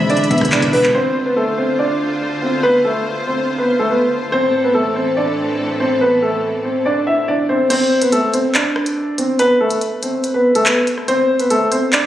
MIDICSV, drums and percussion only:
0, 0, Header, 1, 2, 480
1, 0, Start_track
1, 0, Tempo, 422535
1, 1070, Time_signature, 4, 2, 24, 8
1, 13705, End_track
2, 0, Start_track
2, 0, Title_t, "Drums"
2, 110, Note_on_c, 9, 42, 44
2, 190, Note_off_c, 9, 42, 0
2, 190, Note_on_c, 9, 42, 51
2, 270, Note_off_c, 9, 42, 0
2, 270, Note_on_c, 9, 42, 60
2, 350, Note_off_c, 9, 42, 0
2, 350, Note_on_c, 9, 36, 112
2, 350, Note_on_c, 9, 42, 65
2, 430, Note_off_c, 9, 42, 0
2, 430, Note_on_c, 9, 42, 69
2, 463, Note_off_c, 9, 36, 0
2, 469, Note_on_c, 9, 36, 96
2, 470, Note_on_c, 9, 37, 89
2, 509, Note_off_c, 9, 42, 0
2, 509, Note_on_c, 9, 42, 77
2, 583, Note_off_c, 9, 36, 0
2, 584, Note_off_c, 9, 37, 0
2, 589, Note_off_c, 9, 42, 0
2, 589, Note_on_c, 9, 39, 124
2, 589, Note_on_c, 9, 42, 51
2, 703, Note_off_c, 9, 39, 0
2, 703, Note_off_c, 9, 42, 0
2, 709, Note_on_c, 9, 42, 86
2, 710, Note_on_c, 9, 36, 104
2, 823, Note_off_c, 9, 36, 0
2, 823, Note_off_c, 9, 42, 0
2, 831, Note_on_c, 9, 46, 57
2, 944, Note_off_c, 9, 46, 0
2, 949, Note_on_c, 9, 39, 63
2, 1063, Note_off_c, 9, 39, 0
2, 8750, Note_on_c, 9, 42, 82
2, 8750, Note_on_c, 9, 49, 94
2, 8863, Note_off_c, 9, 42, 0
2, 8863, Note_off_c, 9, 49, 0
2, 9105, Note_on_c, 9, 42, 83
2, 9219, Note_off_c, 9, 42, 0
2, 9229, Note_on_c, 9, 42, 84
2, 9343, Note_off_c, 9, 42, 0
2, 9469, Note_on_c, 9, 42, 80
2, 9583, Note_off_c, 9, 42, 0
2, 9709, Note_on_c, 9, 39, 116
2, 9711, Note_on_c, 9, 42, 71
2, 9823, Note_off_c, 9, 39, 0
2, 9824, Note_off_c, 9, 42, 0
2, 9950, Note_on_c, 9, 37, 98
2, 10064, Note_off_c, 9, 37, 0
2, 10067, Note_on_c, 9, 42, 76
2, 10181, Note_off_c, 9, 42, 0
2, 10431, Note_on_c, 9, 42, 79
2, 10544, Note_off_c, 9, 42, 0
2, 10669, Note_on_c, 9, 42, 83
2, 10783, Note_off_c, 9, 42, 0
2, 11025, Note_on_c, 9, 42, 80
2, 11138, Note_off_c, 9, 42, 0
2, 11149, Note_on_c, 9, 42, 82
2, 11263, Note_off_c, 9, 42, 0
2, 11390, Note_on_c, 9, 42, 82
2, 11503, Note_off_c, 9, 42, 0
2, 11630, Note_on_c, 9, 42, 69
2, 11744, Note_off_c, 9, 42, 0
2, 11987, Note_on_c, 9, 42, 74
2, 12101, Note_off_c, 9, 42, 0
2, 12108, Note_on_c, 9, 39, 119
2, 12111, Note_on_c, 9, 42, 78
2, 12222, Note_off_c, 9, 39, 0
2, 12225, Note_off_c, 9, 42, 0
2, 12350, Note_on_c, 9, 42, 77
2, 12464, Note_off_c, 9, 42, 0
2, 12469, Note_on_c, 9, 37, 61
2, 12582, Note_off_c, 9, 37, 0
2, 12589, Note_on_c, 9, 42, 82
2, 12703, Note_off_c, 9, 42, 0
2, 12945, Note_on_c, 9, 42, 80
2, 13059, Note_off_c, 9, 42, 0
2, 13069, Note_on_c, 9, 42, 82
2, 13182, Note_off_c, 9, 42, 0
2, 13310, Note_on_c, 9, 42, 80
2, 13424, Note_off_c, 9, 42, 0
2, 13549, Note_on_c, 9, 39, 115
2, 13551, Note_on_c, 9, 42, 70
2, 13663, Note_off_c, 9, 39, 0
2, 13665, Note_off_c, 9, 42, 0
2, 13705, End_track
0, 0, End_of_file